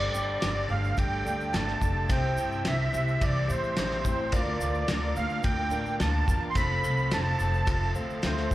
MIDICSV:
0, 0, Header, 1, 8, 480
1, 0, Start_track
1, 0, Tempo, 558140
1, 1803, Time_signature, 4, 2, 24, 8
1, 7350, End_track
2, 0, Start_track
2, 0, Title_t, "Accordion"
2, 0, Program_c, 0, 21
2, 0, Note_on_c, 0, 74, 88
2, 606, Note_on_c, 0, 77, 96
2, 625, Note_off_c, 0, 74, 0
2, 851, Note_off_c, 0, 77, 0
2, 856, Note_on_c, 0, 79, 102
2, 1315, Note_on_c, 0, 81, 92
2, 1343, Note_off_c, 0, 79, 0
2, 1813, Note_off_c, 0, 81, 0
2, 1819, Note_on_c, 0, 79, 100
2, 2258, Note_off_c, 0, 79, 0
2, 2294, Note_on_c, 0, 76, 97
2, 2773, Note_on_c, 0, 74, 101
2, 2782, Note_off_c, 0, 76, 0
2, 3015, Note_off_c, 0, 74, 0
2, 3018, Note_on_c, 0, 72, 89
2, 3234, Note_off_c, 0, 72, 0
2, 3251, Note_on_c, 0, 72, 84
2, 3729, Note_on_c, 0, 74, 92
2, 3741, Note_off_c, 0, 72, 0
2, 4410, Note_off_c, 0, 74, 0
2, 4445, Note_on_c, 0, 77, 104
2, 4666, Note_off_c, 0, 77, 0
2, 4677, Note_on_c, 0, 79, 105
2, 5125, Note_off_c, 0, 79, 0
2, 5155, Note_on_c, 0, 81, 94
2, 5547, Note_off_c, 0, 81, 0
2, 5588, Note_on_c, 0, 84, 80
2, 5643, Note_on_c, 0, 83, 115
2, 5644, Note_off_c, 0, 84, 0
2, 6130, Note_on_c, 0, 81, 102
2, 6135, Note_off_c, 0, 83, 0
2, 6810, Note_off_c, 0, 81, 0
2, 7095, Note_on_c, 0, 72, 80
2, 7350, Note_off_c, 0, 72, 0
2, 7350, End_track
3, 0, Start_track
3, 0, Title_t, "Tonewheel organ"
3, 0, Program_c, 1, 16
3, 0, Note_on_c, 1, 69, 66
3, 0, Note_on_c, 1, 74, 59
3, 0, Note_on_c, 1, 79, 59
3, 0, Note_on_c, 1, 86, 74
3, 1771, Note_off_c, 1, 69, 0
3, 1785, Note_off_c, 1, 74, 0
3, 1786, Note_off_c, 1, 86, 0
3, 1811, Note_on_c, 1, 72, 71
3, 1813, Note_on_c, 1, 88, 78
3, 1817, Note_on_c, 1, 76, 61
3, 3690, Note_off_c, 1, 79, 0
3, 3707, Note_off_c, 1, 72, 0
3, 3708, Note_off_c, 1, 88, 0
3, 3710, Note_off_c, 1, 76, 0
3, 3727, Note_on_c, 1, 70, 72
3, 3728, Note_on_c, 1, 77, 62
3, 3735, Note_on_c, 1, 74, 69
3, 3735, Note_on_c, 1, 86, 73
3, 5623, Note_off_c, 1, 70, 0
3, 5623, Note_off_c, 1, 77, 0
3, 5627, Note_off_c, 1, 74, 0
3, 5627, Note_off_c, 1, 86, 0
3, 5642, Note_on_c, 1, 69, 64
3, 5648, Note_on_c, 1, 72, 60
3, 5648, Note_on_c, 1, 77, 64
3, 5655, Note_on_c, 1, 81, 81
3, 7350, Note_off_c, 1, 69, 0
3, 7350, Note_off_c, 1, 72, 0
3, 7350, Note_off_c, 1, 77, 0
3, 7350, Note_off_c, 1, 81, 0
3, 7350, End_track
4, 0, Start_track
4, 0, Title_t, "Reed electric piano"
4, 0, Program_c, 2, 4
4, 0, Note_on_c, 2, 67, 69
4, 0, Note_on_c, 2, 69, 66
4, 0, Note_on_c, 2, 74, 70
4, 650, Note_off_c, 2, 67, 0
4, 650, Note_off_c, 2, 69, 0
4, 651, Note_off_c, 2, 74, 0
4, 1076, Note_on_c, 2, 67, 76
4, 1079, Note_on_c, 2, 69, 68
4, 1080, Note_on_c, 2, 74, 84
4, 1657, Note_off_c, 2, 67, 0
4, 1658, Note_off_c, 2, 69, 0
4, 1659, Note_off_c, 2, 74, 0
4, 1790, Note_on_c, 2, 67, 73
4, 1797, Note_on_c, 2, 72, 65
4, 1798, Note_on_c, 2, 76, 78
4, 2566, Note_off_c, 2, 67, 0
4, 2570, Note_off_c, 2, 72, 0
4, 2570, Note_off_c, 2, 76, 0
4, 2990, Note_on_c, 2, 67, 75
4, 2992, Note_on_c, 2, 72, 69
4, 2996, Note_on_c, 2, 76, 83
4, 3573, Note_off_c, 2, 67, 0
4, 3574, Note_off_c, 2, 72, 0
4, 3576, Note_off_c, 2, 76, 0
4, 3716, Note_on_c, 2, 70, 75
4, 3720, Note_on_c, 2, 74, 65
4, 3723, Note_on_c, 2, 77, 75
4, 4488, Note_off_c, 2, 70, 0
4, 4490, Note_off_c, 2, 74, 0
4, 4492, Note_off_c, 2, 77, 0
4, 4909, Note_on_c, 2, 74, 66
4, 4915, Note_on_c, 2, 70, 75
4, 4915, Note_on_c, 2, 77, 90
4, 5492, Note_off_c, 2, 74, 0
4, 5494, Note_off_c, 2, 70, 0
4, 5495, Note_off_c, 2, 77, 0
4, 5643, Note_on_c, 2, 69, 77
4, 5643, Note_on_c, 2, 72, 68
4, 5643, Note_on_c, 2, 77, 80
4, 6411, Note_off_c, 2, 69, 0
4, 6411, Note_off_c, 2, 72, 0
4, 6411, Note_off_c, 2, 77, 0
4, 6840, Note_on_c, 2, 69, 91
4, 6840, Note_on_c, 2, 72, 81
4, 6843, Note_on_c, 2, 77, 99
4, 7350, Note_off_c, 2, 69, 0
4, 7350, Note_off_c, 2, 72, 0
4, 7350, Note_off_c, 2, 77, 0
4, 7350, End_track
5, 0, Start_track
5, 0, Title_t, "Steel-string acoustic guitar"
5, 0, Program_c, 3, 25
5, 0, Note_on_c, 3, 55, 83
5, 0, Note_on_c, 3, 62, 77
5, 0, Note_on_c, 3, 67, 78
5, 0, Note_on_c, 3, 69, 99
5, 346, Note_off_c, 3, 55, 0
5, 349, Note_on_c, 3, 55, 56
5, 351, Note_off_c, 3, 62, 0
5, 361, Note_on_c, 3, 62, 61
5, 364, Note_off_c, 3, 67, 0
5, 364, Note_off_c, 3, 69, 0
5, 368, Note_on_c, 3, 67, 73
5, 376, Note_on_c, 3, 69, 67
5, 582, Note_off_c, 3, 69, 0
5, 592, Note_on_c, 3, 69, 48
5, 593, Note_off_c, 3, 67, 0
5, 596, Note_off_c, 3, 55, 0
5, 602, Note_off_c, 3, 62, 0
5, 603, Note_on_c, 3, 67, 51
5, 617, Note_on_c, 3, 62, 41
5, 1313, Note_off_c, 3, 62, 0
5, 1318, Note_off_c, 3, 69, 0
5, 1318, Note_on_c, 3, 55, 59
5, 1323, Note_off_c, 3, 67, 0
5, 1323, Note_on_c, 3, 62, 61
5, 1336, Note_on_c, 3, 69, 60
5, 1337, Note_on_c, 3, 67, 60
5, 1548, Note_off_c, 3, 69, 0
5, 1559, Note_on_c, 3, 69, 57
5, 1560, Note_off_c, 3, 55, 0
5, 1561, Note_off_c, 3, 67, 0
5, 1563, Note_off_c, 3, 62, 0
5, 1571, Note_on_c, 3, 67, 49
5, 1579, Note_on_c, 3, 62, 45
5, 1801, Note_off_c, 3, 69, 0
5, 1801, Note_on_c, 3, 48, 78
5, 1807, Note_off_c, 3, 67, 0
5, 1807, Note_on_c, 3, 52, 80
5, 1807, Note_on_c, 3, 55, 81
5, 1810, Note_off_c, 3, 62, 0
5, 1813, Note_on_c, 3, 60, 83
5, 1815, Note_on_c, 3, 64, 83
5, 1817, Note_on_c, 3, 72, 90
5, 2273, Note_off_c, 3, 55, 0
5, 2275, Note_off_c, 3, 60, 0
5, 2282, Note_off_c, 3, 48, 0
5, 2283, Note_on_c, 3, 55, 64
5, 2285, Note_off_c, 3, 52, 0
5, 2286, Note_on_c, 3, 60, 65
5, 2287, Note_off_c, 3, 64, 0
5, 2290, Note_off_c, 3, 72, 0
5, 2297, Note_on_c, 3, 64, 65
5, 2300, Note_on_c, 3, 72, 61
5, 2507, Note_off_c, 3, 72, 0
5, 2517, Note_off_c, 3, 64, 0
5, 2517, Note_on_c, 3, 72, 54
5, 2523, Note_off_c, 3, 55, 0
5, 2524, Note_off_c, 3, 60, 0
5, 2527, Note_on_c, 3, 64, 48
5, 2533, Note_on_c, 3, 60, 54
5, 2540, Note_on_c, 3, 55, 43
5, 3231, Note_off_c, 3, 55, 0
5, 3240, Note_off_c, 3, 60, 0
5, 3240, Note_off_c, 3, 72, 0
5, 3245, Note_off_c, 3, 64, 0
5, 3250, Note_on_c, 3, 60, 66
5, 3258, Note_on_c, 3, 64, 64
5, 3262, Note_on_c, 3, 72, 61
5, 3465, Note_off_c, 3, 72, 0
5, 3473, Note_off_c, 3, 64, 0
5, 3475, Note_on_c, 3, 72, 56
5, 3484, Note_on_c, 3, 64, 49
5, 3486, Note_off_c, 3, 60, 0
5, 3495, Note_on_c, 3, 60, 44
5, 3500, Note_on_c, 3, 55, 46
5, 3716, Note_on_c, 3, 50, 78
5, 3718, Note_off_c, 3, 72, 0
5, 3719, Note_off_c, 3, 55, 0
5, 3719, Note_off_c, 3, 60, 0
5, 3722, Note_on_c, 3, 62, 82
5, 3723, Note_off_c, 3, 64, 0
5, 3723, Note_on_c, 3, 58, 92
5, 3728, Note_on_c, 3, 65, 93
5, 3732, Note_on_c, 3, 70, 93
5, 4187, Note_off_c, 3, 58, 0
5, 4195, Note_off_c, 3, 62, 0
5, 4197, Note_on_c, 3, 58, 62
5, 4198, Note_off_c, 3, 50, 0
5, 4206, Note_off_c, 3, 70, 0
5, 4206, Note_on_c, 3, 62, 60
5, 4210, Note_off_c, 3, 65, 0
5, 4213, Note_on_c, 3, 65, 65
5, 4215, Note_on_c, 3, 70, 70
5, 4439, Note_off_c, 3, 58, 0
5, 4439, Note_off_c, 3, 70, 0
5, 4443, Note_off_c, 3, 62, 0
5, 4447, Note_off_c, 3, 65, 0
5, 4449, Note_on_c, 3, 70, 58
5, 4458, Note_on_c, 3, 65, 50
5, 4464, Note_on_c, 3, 62, 44
5, 5163, Note_off_c, 3, 62, 0
5, 5164, Note_off_c, 3, 70, 0
5, 5166, Note_on_c, 3, 58, 58
5, 5169, Note_off_c, 3, 65, 0
5, 5173, Note_on_c, 3, 62, 67
5, 5179, Note_on_c, 3, 65, 64
5, 5184, Note_on_c, 3, 70, 63
5, 5400, Note_off_c, 3, 70, 0
5, 5403, Note_off_c, 3, 58, 0
5, 5406, Note_off_c, 3, 62, 0
5, 5409, Note_off_c, 3, 65, 0
5, 5411, Note_on_c, 3, 70, 52
5, 5425, Note_on_c, 3, 65, 48
5, 5430, Note_on_c, 3, 62, 43
5, 5645, Note_off_c, 3, 70, 0
5, 5648, Note_off_c, 3, 65, 0
5, 5651, Note_off_c, 3, 62, 0
5, 5651, Note_on_c, 3, 53, 80
5, 5653, Note_on_c, 3, 57, 87
5, 5654, Note_on_c, 3, 60, 96
5, 5658, Note_on_c, 3, 65, 93
5, 5662, Note_on_c, 3, 69, 90
5, 6111, Note_off_c, 3, 57, 0
5, 6122, Note_on_c, 3, 57, 65
5, 6123, Note_off_c, 3, 60, 0
5, 6125, Note_off_c, 3, 53, 0
5, 6128, Note_off_c, 3, 65, 0
5, 6130, Note_off_c, 3, 69, 0
5, 6134, Note_on_c, 3, 60, 58
5, 6139, Note_on_c, 3, 65, 58
5, 6143, Note_on_c, 3, 69, 64
5, 6359, Note_off_c, 3, 69, 0
5, 6360, Note_off_c, 3, 57, 0
5, 6366, Note_off_c, 3, 60, 0
5, 6369, Note_off_c, 3, 65, 0
5, 6370, Note_on_c, 3, 69, 51
5, 6379, Note_on_c, 3, 65, 52
5, 6387, Note_on_c, 3, 60, 46
5, 7068, Note_off_c, 3, 60, 0
5, 7070, Note_on_c, 3, 57, 65
5, 7075, Note_off_c, 3, 65, 0
5, 7078, Note_on_c, 3, 60, 60
5, 7082, Note_off_c, 3, 69, 0
5, 7085, Note_on_c, 3, 65, 70
5, 7092, Note_on_c, 3, 69, 74
5, 7315, Note_off_c, 3, 57, 0
5, 7315, Note_off_c, 3, 69, 0
5, 7319, Note_off_c, 3, 60, 0
5, 7322, Note_off_c, 3, 65, 0
5, 7350, End_track
6, 0, Start_track
6, 0, Title_t, "Clean electric guitar"
6, 0, Program_c, 4, 27
6, 0, Note_on_c, 4, 55, 78
6, 120, Note_on_c, 4, 67, 70
6, 363, Note_on_c, 4, 62, 70
6, 600, Note_on_c, 4, 57, 70
6, 830, Note_off_c, 4, 55, 0
6, 840, Note_on_c, 4, 55, 75
6, 1072, Note_off_c, 4, 62, 0
6, 1082, Note_on_c, 4, 62, 71
6, 1310, Note_off_c, 4, 57, 0
6, 1321, Note_on_c, 4, 57, 77
6, 1322, Note_off_c, 4, 67, 0
6, 1552, Note_off_c, 4, 62, 0
6, 1562, Note_on_c, 4, 62, 65
6, 1801, Note_off_c, 4, 55, 0
6, 1802, Note_off_c, 4, 57, 0
6, 1802, Note_off_c, 4, 62, 0
6, 1805, Note_on_c, 4, 48, 80
6, 2050, Note_on_c, 4, 67, 69
6, 2285, Note_on_c, 4, 60, 74
6, 2525, Note_on_c, 4, 55, 71
6, 2764, Note_on_c, 4, 52, 72
6, 2992, Note_off_c, 4, 60, 0
6, 3003, Note_on_c, 4, 60, 69
6, 3004, Note_off_c, 4, 48, 0
6, 3235, Note_off_c, 4, 55, 0
6, 3245, Note_on_c, 4, 55, 79
6, 3246, Note_off_c, 4, 67, 0
6, 3470, Note_off_c, 4, 60, 0
6, 3480, Note_on_c, 4, 60, 72
6, 3721, Note_off_c, 4, 60, 0
6, 3723, Note_off_c, 4, 52, 0
6, 3723, Note_off_c, 4, 55, 0
6, 3727, Note_on_c, 4, 50, 81
6, 3959, Note_on_c, 4, 65, 78
6, 4206, Note_on_c, 4, 62, 73
6, 4445, Note_on_c, 4, 58, 77
6, 4675, Note_off_c, 4, 50, 0
6, 4685, Note_on_c, 4, 50, 79
6, 4901, Note_off_c, 4, 62, 0
6, 4911, Note_on_c, 4, 62, 76
6, 5144, Note_off_c, 4, 58, 0
6, 5154, Note_on_c, 4, 58, 76
6, 5159, Note_off_c, 4, 65, 0
6, 5388, Note_off_c, 4, 62, 0
6, 5399, Note_on_c, 4, 62, 72
6, 5628, Note_on_c, 4, 41, 81
6, 5637, Note_off_c, 4, 58, 0
6, 5639, Note_off_c, 4, 62, 0
6, 5642, Note_off_c, 4, 50, 0
6, 5878, Note_on_c, 4, 65, 73
6, 6122, Note_on_c, 4, 60, 71
6, 6357, Note_on_c, 4, 57, 65
6, 6592, Note_on_c, 4, 53, 71
6, 6821, Note_off_c, 4, 60, 0
6, 6832, Note_on_c, 4, 60, 62
6, 6833, Note_off_c, 4, 41, 0
6, 7062, Note_off_c, 4, 57, 0
6, 7073, Note_on_c, 4, 57, 77
6, 7078, Note_off_c, 4, 65, 0
6, 7312, Note_off_c, 4, 60, 0
6, 7323, Note_on_c, 4, 60, 65
6, 7350, Note_off_c, 4, 53, 0
6, 7350, Note_off_c, 4, 57, 0
6, 7350, Note_off_c, 4, 60, 0
6, 7350, End_track
7, 0, Start_track
7, 0, Title_t, "Upright bass"
7, 0, Program_c, 5, 32
7, 129, Note_on_c, 5, 31, 84
7, 325, Note_off_c, 5, 31, 0
7, 370, Note_on_c, 5, 31, 92
7, 566, Note_off_c, 5, 31, 0
7, 603, Note_on_c, 5, 31, 92
7, 801, Note_off_c, 5, 31, 0
7, 842, Note_on_c, 5, 31, 85
7, 1041, Note_off_c, 5, 31, 0
7, 1082, Note_on_c, 5, 38, 94
7, 1281, Note_off_c, 5, 38, 0
7, 1315, Note_on_c, 5, 31, 85
7, 1517, Note_off_c, 5, 31, 0
7, 1561, Note_on_c, 5, 29, 81
7, 1760, Note_off_c, 5, 29, 0
7, 1803, Note_on_c, 5, 36, 90
7, 2001, Note_off_c, 5, 36, 0
7, 2044, Note_on_c, 5, 43, 81
7, 2242, Note_off_c, 5, 43, 0
7, 2287, Note_on_c, 5, 36, 93
7, 2484, Note_off_c, 5, 36, 0
7, 2530, Note_on_c, 5, 36, 91
7, 2726, Note_off_c, 5, 36, 0
7, 2763, Note_on_c, 5, 36, 94
7, 2962, Note_off_c, 5, 36, 0
7, 3010, Note_on_c, 5, 45, 87
7, 3206, Note_off_c, 5, 45, 0
7, 3247, Note_on_c, 5, 33, 87
7, 3444, Note_off_c, 5, 33, 0
7, 3486, Note_on_c, 5, 45, 93
7, 3683, Note_off_c, 5, 45, 0
7, 3725, Note_on_c, 5, 38, 96
7, 3922, Note_off_c, 5, 38, 0
7, 3965, Note_on_c, 5, 38, 88
7, 4162, Note_off_c, 5, 38, 0
7, 4207, Note_on_c, 5, 38, 97
7, 4403, Note_off_c, 5, 38, 0
7, 4444, Note_on_c, 5, 38, 96
7, 4642, Note_off_c, 5, 38, 0
7, 4681, Note_on_c, 5, 38, 94
7, 4880, Note_off_c, 5, 38, 0
7, 4924, Note_on_c, 5, 45, 90
7, 5121, Note_off_c, 5, 45, 0
7, 5162, Note_on_c, 5, 38, 89
7, 5360, Note_off_c, 5, 38, 0
7, 5398, Note_on_c, 5, 40, 82
7, 5597, Note_off_c, 5, 40, 0
7, 5640, Note_on_c, 5, 29, 98
7, 5838, Note_off_c, 5, 29, 0
7, 5886, Note_on_c, 5, 36, 92
7, 6082, Note_off_c, 5, 36, 0
7, 6125, Note_on_c, 5, 29, 99
7, 6321, Note_off_c, 5, 29, 0
7, 6367, Note_on_c, 5, 29, 95
7, 6563, Note_off_c, 5, 29, 0
7, 6601, Note_on_c, 5, 29, 84
7, 6799, Note_off_c, 5, 29, 0
7, 6843, Note_on_c, 5, 38, 91
7, 7040, Note_off_c, 5, 38, 0
7, 7083, Note_on_c, 5, 38, 87
7, 7280, Note_off_c, 5, 38, 0
7, 7320, Note_on_c, 5, 30, 78
7, 7350, Note_off_c, 5, 30, 0
7, 7350, End_track
8, 0, Start_track
8, 0, Title_t, "Drums"
8, 125, Note_on_c, 9, 82, 105
8, 211, Note_off_c, 9, 82, 0
8, 361, Note_on_c, 9, 53, 78
8, 362, Note_on_c, 9, 38, 112
8, 363, Note_on_c, 9, 82, 72
8, 447, Note_off_c, 9, 53, 0
8, 448, Note_off_c, 9, 38, 0
8, 449, Note_off_c, 9, 82, 0
8, 724, Note_on_c, 9, 82, 30
8, 810, Note_off_c, 9, 82, 0
8, 835, Note_on_c, 9, 82, 75
8, 841, Note_on_c, 9, 36, 107
8, 845, Note_on_c, 9, 53, 70
8, 921, Note_off_c, 9, 82, 0
8, 927, Note_off_c, 9, 36, 0
8, 931, Note_off_c, 9, 53, 0
8, 1088, Note_on_c, 9, 82, 97
8, 1174, Note_off_c, 9, 82, 0
8, 1209, Note_on_c, 9, 82, 29
8, 1295, Note_off_c, 9, 82, 0
8, 1324, Note_on_c, 9, 53, 65
8, 1324, Note_on_c, 9, 82, 68
8, 1325, Note_on_c, 9, 38, 106
8, 1410, Note_off_c, 9, 53, 0
8, 1410, Note_off_c, 9, 82, 0
8, 1411, Note_off_c, 9, 38, 0
8, 1445, Note_on_c, 9, 38, 32
8, 1531, Note_off_c, 9, 38, 0
8, 1561, Note_on_c, 9, 36, 90
8, 1564, Note_on_c, 9, 82, 97
8, 1647, Note_off_c, 9, 36, 0
8, 1650, Note_off_c, 9, 82, 0
8, 1800, Note_on_c, 9, 82, 70
8, 1802, Note_on_c, 9, 36, 110
8, 1803, Note_on_c, 9, 53, 68
8, 1886, Note_off_c, 9, 82, 0
8, 1888, Note_off_c, 9, 36, 0
8, 1889, Note_off_c, 9, 53, 0
8, 2040, Note_on_c, 9, 82, 94
8, 2126, Note_off_c, 9, 82, 0
8, 2167, Note_on_c, 9, 82, 30
8, 2253, Note_off_c, 9, 82, 0
8, 2278, Note_on_c, 9, 53, 75
8, 2279, Note_on_c, 9, 38, 108
8, 2282, Note_on_c, 9, 82, 71
8, 2364, Note_off_c, 9, 53, 0
8, 2365, Note_off_c, 9, 38, 0
8, 2368, Note_off_c, 9, 82, 0
8, 2528, Note_on_c, 9, 82, 93
8, 2614, Note_off_c, 9, 82, 0
8, 2651, Note_on_c, 9, 82, 30
8, 2737, Note_off_c, 9, 82, 0
8, 2764, Note_on_c, 9, 36, 112
8, 2764, Note_on_c, 9, 82, 79
8, 2765, Note_on_c, 9, 53, 78
8, 2850, Note_off_c, 9, 36, 0
8, 2850, Note_off_c, 9, 82, 0
8, 2851, Note_off_c, 9, 53, 0
8, 3006, Note_on_c, 9, 82, 96
8, 3092, Note_off_c, 9, 82, 0
8, 3128, Note_on_c, 9, 82, 28
8, 3214, Note_off_c, 9, 82, 0
8, 3239, Note_on_c, 9, 53, 74
8, 3240, Note_on_c, 9, 38, 106
8, 3245, Note_on_c, 9, 82, 68
8, 3325, Note_off_c, 9, 53, 0
8, 3326, Note_off_c, 9, 38, 0
8, 3331, Note_off_c, 9, 82, 0
8, 3364, Note_on_c, 9, 38, 30
8, 3450, Note_off_c, 9, 38, 0
8, 3482, Note_on_c, 9, 36, 85
8, 3483, Note_on_c, 9, 82, 104
8, 3568, Note_off_c, 9, 36, 0
8, 3569, Note_off_c, 9, 82, 0
8, 3716, Note_on_c, 9, 53, 75
8, 3722, Note_on_c, 9, 36, 108
8, 3727, Note_on_c, 9, 82, 71
8, 3802, Note_off_c, 9, 53, 0
8, 3808, Note_off_c, 9, 36, 0
8, 3813, Note_off_c, 9, 82, 0
8, 3963, Note_on_c, 9, 82, 102
8, 4049, Note_off_c, 9, 82, 0
8, 4080, Note_on_c, 9, 82, 29
8, 4166, Note_off_c, 9, 82, 0
8, 4198, Note_on_c, 9, 53, 76
8, 4199, Note_on_c, 9, 38, 109
8, 4201, Note_on_c, 9, 82, 72
8, 4284, Note_off_c, 9, 53, 0
8, 4285, Note_off_c, 9, 38, 0
8, 4287, Note_off_c, 9, 82, 0
8, 4438, Note_on_c, 9, 82, 98
8, 4524, Note_off_c, 9, 82, 0
8, 4554, Note_on_c, 9, 82, 30
8, 4640, Note_off_c, 9, 82, 0
8, 4671, Note_on_c, 9, 82, 69
8, 4679, Note_on_c, 9, 53, 70
8, 4681, Note_on_c, 9, 36, 111
8, 4757, Note_off_c, 9, 82, 0
8, 4765, Note_off_c, 9, 53, 0
8, 4767, Note_off_c, 9, 36, 0
8, 4907, Note_on_c, 9, 82, 91
8, 4993, Note_off_c, 9, 82, 0
8, 5038, Note_on_c, 9, 82, 27
8, 5124, Note_off_c, 9, 82, 0
8, 5159, Note_on_c, 9, 53, 66
8, 5160, Note_on_c, 9, 38, 105
8, 5165, Note_on_c, 9, 82, 69
8, 5245, Note_off_c, 9, 53, 0
8, 5246, Note_off_c, 9, 38, 0
8, 5251, Note_off_c, 9, 82, 0
8, 5400, Note_on_c, 9, 36, 96
8, 5406, Note_on_c, 9, 82, 99
8, 5486, Note_off_c, 9, 36, 0
8, 5492, Note_off_c, 9, 82, 0
8, 5636, Note_on_c, 9, 53, 68
8, 5638, Note_on_c, 9, 36, 105
8, 5642, Note_on_c, 9, 82, 67
8, 5722, Note_off_c, 9, 53, 0
8, 5724, Note_off_c, 9, 36, 0
8, 5728, Note_off_c, 9, 82, 0
8, 5883, Note_on_c, 9, 82, 89
8, 5969, Note_off_c, 9, 82, 0
8, 6001, Note_on_c, 9, 82, 26
8, 6087, Note_off_c, 9, 82, 0
8, 6117, Note_on_c, 9, 82, 68
8, 6119, Note_on_c, 9, 53, 76
8, 6120, Note_on_c, 9, 38, 110
8, 6203, Note_off_c, 9, 82, 0
8, 6205, Note_off_c, 9, 53, 0
8, 6206, Note_off_c, 9, 38, 0
8, 6358, Note_on_c, 9, 82, 93
8, 6444, Note_off_c, 9, 82, 0
8, 6484, Note_on_c, 9, 82, 28
8, 6570, Note_off_c, 9, 82, 0
8, 6595, Note_on_c, 9, 82, 72
8, 6598, Note_on_c, 9, 36, 120
8, 6599, Note_on_c, 9, 53, 78
8, 6681, Note_off_c, 9, 82, 0
8, 6684, Note_off_c, 9, 36, 0
8, 6685, Note_off_c, 9, 53, 0
8, 6837, Note_on_c, 9, 82, 88
8, 6923, Note_off_c, 9, 82, 0
8, 6965, Note_on_c, 9, 82, 26
8, 7051, Note_off_c, 9, 82, 0
8, 7077, Note_on_c, 9, 53, 70
8, 7078, Note_on_c, 9, 38, 102
8, 7081, Note_on_c, 9, 82, 70
8, 7163, Note_off_c, 9, 53, 0
8, 7164, Note_off_c, 9, 38, 0
8, 7167, Note_off_c, 9, 82, 0
8, 7203, Note_on_c, 9, 38, 32
8, 7289, Note_off_c, 9, 38, 0
8, 7320, Note_on_c, 9, 36, 88
8, 7322, Note_on_c, 9, 82, 95
8, 7350, Note_off_c, 9, 36, 0
8, 7350, Note_off_c, 9, 82, 0
8, 7350, End_track
0, 0, End_of_file